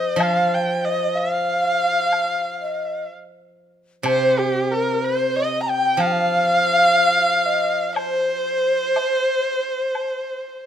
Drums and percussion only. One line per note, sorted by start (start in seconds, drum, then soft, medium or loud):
0.20 high woodblock medium
2.12 high woodblock soft
4.06 high woodblock medium
6.00 high woodblock soft
7.96 high woodblock medium
8.96 high woodblock soft
8.96 low woodblock soft
9.95 high woodblock soft